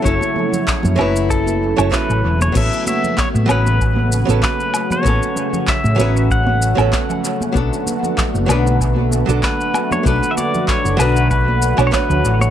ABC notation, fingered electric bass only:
X:1
M:4/4
L:1/16
Q:"Swing 16ths" 1/4=96
K:A
V:1 name="Fingered electric bass" clef=bass
F,,, z4 F,, F,,,4- F,,, F,,, z A,,, E,,,2 | A,,, z4 A,, A,,,4- A,,, A,,, z4 | A,,, z4 A,, A,,,4- A,,, A,,, z4 | B,,, z4 F,,, B,,,4- B,,, B,,, z4 |
B,,, z4 F,,, B,,,4- B,,, B,,, z D,, A,,,2 |]